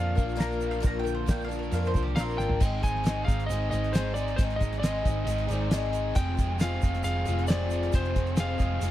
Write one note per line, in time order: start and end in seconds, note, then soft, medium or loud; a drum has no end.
0.00 0.17 F2 medium
0.00 0.18 A#2 medium
0.00 0.39 D3 medium
0.00 1.06 F3 medium
0.00 0.16 A#3 medium
0.00 0.17 A#3 medium
0.00 0.17 D4 medium
0.00 0.61 D4 medium
0.00 0.16 F4 medium
0.00 0.14 A#4 medium
0.00 0.39 A#4 medium
0.00 1.25 F5 loud
0.15 0.80 A#1 loud
0.15 1.25 A#3 medium
0.15 0.35 D4 soft
0.15 0.36 F4 medium
0.15 0.37 A#4 medium
0.15 kick medium
0.15 shaker medium
0.29 shaker soft
0.36 0.79 A#2 medium
0.36 0.80 A#3 loud
0.36 0.81 D4 medium
0.36 0.81 F4 medium
0.36 0.82 A#4 medium
0.40 0.69 A#5 medium
0.40 snare loud
0.40 closed hi-hat medium
0.40 shaker medium
0.52 shaker soft
0.61 1.47 D4 medium
0.61 shaker medium
0.71 0.85 F5 medium
0.71 shaker soft
0.80 1.04 A#2 medium
0.80 1.05 A#3 medium
0.80 1.05 D4 medium
0.80 1.04 F4 medium
0.80 1.02 A#4 loud
0.80 closed hi-hat medium
0.80 shaker loud
0.84 1.69 A#1 loud
0.84 0.99 A#5 medium
0.84 kick loud
0.99 1.14 G5 medium
1.03 2.16 D3 medium
1.03 1.26 D4 soft
1.03 1.27 F4 medium
1.03 1.27 A#4 medium
1.03 shaker medium
1.15 1.28 C5 medium
1.25 1.50 A#2 medium
1.25 1.50 A#3 medium
1.25 1.50 D4 medium
1.25 1.50 F4 medium
1.25 1.48 A#4 medium
1.25 2.12 D#5 loud
1.25 kick medium
1.25 snare loud
1.25 closed hi-hat medium
1.25 shaker loud
1.30 1.44 G5 medium
1.41 1.58 F5 medium
1.41 shaker soft
1.49 1.72 D4 soft
1.49 1.72 F4 medium
1.49 1.72 A#4 medium
1.49 shaker medium
1.59 1.73 A#4 medium
1.59 shaker soft
1.71 1.93 F2 medium
1.71 2.60 F3 medium
1.71 1.94 A#3 medium
1.71 1.95 D4 medium
1.71 1.95 F4 medium
1.71 1.88 F5 medium
1.71 closed hi-hat medium
1.71 shaker medium
1.75 1.93 A#4 medium
1.85 2.02 C5 loud
1.85 shaker soft
1.94 2.15 C2 medium
1.94 2.62 A#3 medium
1.94 2.16 D4 medium
1.94 2.16 F4 medium
1.94 2.17 A#4 medium
1.94 kick medium
1.94 shaker medium
2.02 2.17 G4 medium
2.02 snare soft
2.16 2.37 A#1 medium
2.16 2.60 A#2 medium
2.16 2.61 A#3 loud
2.16 2.49 C4 medium
2.16 2.61 D4 medium
2.16 2.61 F4 medium
2.16 2.62 A#4 loud
2.16 2.22 F5 loud
2.16 snare loud
2.16 closed hi-hat medium
2.16 shaker medium
2.21 2.51 F4 medium
2.30 shaker soft
2.38 2.59 G#1 medium
2.38 2.61 D4 medium
2.38 2.83 G5 loud
2.38 snare medium
2.38 shaker medium
2.49 floor tom medium
2.60 3.24 G#1 loud
2.60 2.83 G#2 medium
2.60 2.83 D#3 medium
2.60 2.83 G#3 medium
2.60 2.82 C4 medium
2.60 2.82 D#4 medium
2.60 2.81 G#4 medium
2.60 kick loud
2.60 crash loud
2.60 shaker medium
2.82 3.04 G#3 soft
2.82 3.04 C4 soft
2.82 3.04 D#4 soft
2.82 3.04 G#4 soft
2.82 3.25 G#5 loud
2.82 kick medium
2.82 closed hi-hat medium
2.82 shaker medium
2.95 snare soft
3.03 3.27 G#2 medium
3.03 3.27 D#3 medium
3.03 3.27 G#3 medium
3.03 3.27 C4 medium
3.03 3.26 D#4 medium
3.03 3.25 G#4 medium
3.03 snare loud
3.03 closed hi-hat loud
3.03 shaker loud
3.25 3.49 G#1 medium
3.25 3.49 D#4 soft
3.25 3.49 G#4 soft
3.25 3.46 F5 medium
3.25 kick medium
3.25 closed hi-hat medium
3.29 3.48 G#3 soft
3.29 3.50 C4 soft
3.29 shaker medium
3.40 closed hi-hat soft
3.46 3.72 G#3 medium
3.46 3.69 D#5 medium
3.46 shaker medium
3.51 3.71 G#1 medium
3.51 3.72 C4 medium
3.51 3.71 D#4 medium
3.51 3.70 G#4 medium
3.51 closed hi-hat loud
3.71 4.34 G#1 loud
3.71 4.17 G#2 medium
3.71 4.17 D#3 medium
3.71 3.93 G#3 soft
3.71 3.94 C4 medium
3.71 3.94 D#4 medium
3.71 3.94 G#4 soft
3.71 3.94 D#5 medium
3.71 closed hi-hat medium
3.71 shaker medium
3.84 closed hi-hat soft
3.93 4.37 G#2 medium
3.93 4.37 D#3 medium
3.93 4.39 G#3 medium
3.93 4.39 C4 medium
3.93 4.39 D#4 medium
3.93 4.40 G#4 medium
3.93 4.16 C5 medium
3.93 snare loud
3.93 closed hi-hat loud
3.93 shaker medium
4.14 4.38 D#4 medium
4.14 4.41 G#4 medium
4.14 4.38 D5 medium
4.14 closed hi-hat medium
4.14 shaker medium
4.18 4.38 G#3 medium
4.18 4.39 C4 medium
4.28 closed hi-hat soft
4.36 5.01 G#1 loud
4.36 4.60 G#2 medium
4.36 4.61 D#3 medium
4.36 4.61 G#3 medium
4.36 4.61 C4 medium
4.36 4.61 D#4 medium
4.36 4.43 C5 loud
4.36 kick loud
4.36 closed hi-hat loud
4.36 shaker loud
4.40 4.60 G#4 medium
4.50 closed hi-hat medium
4.56 4.78 D#5 medium
4.60 4.84 C4 soft
4.60 4.84 D#4 medium
4.60 4.83 G#4 soft
4.60 kick medium
4.60 closed hi-hat medium
4.60 shaker medium
4.65 4.84 G#3 soft
4.73 snare soft
4.73 closed hi-hat soft
4.79 5.51 D#5 medium
4.79 closed hi-hat loud
4.84 5.06 G#2 medium
4.84 5.06 D#3 medium
4.84 5.06 G#3 medium
4.84 5.06 C4 medium
4.84 5.05 D#4 medium
4.84 5.05 G#4 medium
4.84 snare loud
4.84 shaker loud
5.05 5.26 G#1 medium
5.05 5.27 G#3 soft
5.05 5.28 C4 soft
5.05 5.28 D#4 soft
5.05 5.28 G#4 soft
5.05 kick medium
5.05 closed hi-hat medium
5.05 shaker medium
5.26 5.47 G#1 medium
5.26 5.49 G#3 medium
5.26 5.50 C4 medium
5.26 5.51 D#4 medium
5.26 closed hi-hat loud
5.26 shaker medium
5.31 5.50 G#4 medium
5.38 closed hi-hat soft
5.48 6.12 G#1 loud
5.48 5.94 G#2 medium
5.48 5.94 D#3 medium
5.48 5.70 G#3 medium
5.48 5.71 C4 medium
5.48 5.71 D#4 medium
5.48 5.72 G#4 medium
5.48 5.88 D5 medium
5.48 closed hi-hat medium
5.48 shaker medium
5.53 5.72 G#3 medium
5.53 5.72 C4 medium
5.53 5.72 D#4 medium
5.71 6.16 G#2 medium
5.71 6.16 D#3 medium
5.71 6.17 G#3 loud
5.71 6.18 C4 loud
5.71 6.17 D#4 loud
5.71 6.19 G#4 loud
5.71 snare loud
5.71 closed hi-hat loud
5.71 shaker medium
5.93 6.17 G#3 medium
5.93 6.18 C4 medium
5.93 6.14 D#4 medium
5.93 6.19 G#4 medium
5.93 closed hi-hat medium
5.93 shaker medium
6.15 6.78 F1 loud
6.15 6.38 F2 medium
6.15 6.39 C3 medium
6.15 6.39 F3 medium
6.15 6.39 G#3 medium
6.15 6.37 C4 medium
6.15 6.57 G5 loud
6.15 kick loud
6.15 closed hi-hat loud
6.15 shaker loud
6.19 6.36 G#4 medium
6.37 6.59 F3 soft
6.37 6.59 G#3 soft
6.37 6.59 C4 medium
6.37 6.59 G#4 medium
6.37 kick medium
6.37 closed hi-hat medium
6.37 shaker medium
6.58 6.81 F2 medium
6.58 6.82 C3 medium
6.58 6.82 F3 medium
6.58 6.82 G#3 medium
6.58 6.81 C4 medium
6.58 6.81 G#4 medium
6.58 7.03 F5 loud
6.58 snare loud
6.58 closed hi-hat loud
6.58 shaker loud
6.73 snare soft
6.82 7.03 F1 loud
6.82 7.02 F3 soft
6.82 7.03 G#3 soft
6.82 7.04 C4 soft
6.82 7.04 G#4 soft
6.82 kick medium
6.82 closed hi-hat medium
6.82 shaker medium
6.94 snare soft
6.94 closed hi-hat medium
7.03 7.25 F1 medium
7.03 7.26 F3 medium
7.03 7.26 G#3 medium
7.03 7.25 C4 medium
7.03 7.24 G#4 medium
7.03 7.45 F5 loud
7.03 closed hi-hat medium
7.03 shaker medium
7.25 7.89 F1 loud
7.25 7.47 F3 medium
7.25 7.47 G#3 medium
7.25 7.48 C4 medium
7.25 7.48 G#4 medium
7.25 closed hi-hat medium
7.25 shaker medium
7.30 7.72 F2 medium
7.30 7.72 C3 medium
7.39 closed hi-hat soft
7.47 7.92 F2 medium
7.47 7.93 C3 medium
7.47 7.94 F3 medium
7.47 7.93 G#3 medium
7.47 7.93 C4 medium
7.47 7.93 G#4 medium
7.47 7.94 D5 medium
7.47 snare loud
7.47 closed hi-hat loud
7.47 shaker medium
7.70 7.94 G#3 medium
7.70 7.94 C4 medium
7.70 7.95 G#4 medium
7.70 closed hi-hat medium
7.70 shaker medium
7.74 7.94 F3 medium
7.83 closed hi-hat soft
7.93 8.56 F1 loud
7.93 8.15 F2 medium
7.93 8.15 C3 medium
7.93 8.16 F3 medium
7.93 8.16 G#3 medium
7.93 8.16 C4 medium
7.93 8.15 G#4 medium
7.93 8.39 C5 medium
7.93 kick loud
7.93 closed hi-hat loud
7.93 shaker medium
8.05 closed hi-hat soft
8.16 8.37 F3 soft
8.16 8.37 G#3 soft
8.16 8.38 C4 soft
8.16 8.37 G#4 medium
8.16 kick medium
8.16 closed hi-hat medium
8.27 closed hi-hat soft
8.37 8.59 F2 medium
8.37 8.59 C3 medium
8.37 8.60 F3 medium
8.37 8.60 G#3 medium
8.37 8.60 C4 medium
8.37 8.58 G#4 medium
8.37 8.91 F5 medium
8.37 snare loud
8.37 closed hi-hat loud
8.37 shaker loud
8.49 snare soft
8.59 8.80 F1 medium
8.59 8.81 F3 soft
8.59 8.82 G#3 soft
8.59 8.82 C4 soft
8.59 8.81 G#4 soft
8.59 kick medium
8.59 closed hi-hat medium
8.59 shaker medium
8.81 8.91 F1 medium
8.81 8.91 F3 medium
8.81 8.91 G#3 medium
8.81 8.91 C4 medium
8.81 closed hi-hat loud
8.81 shaker medium
8.85 8.91 G#4 medium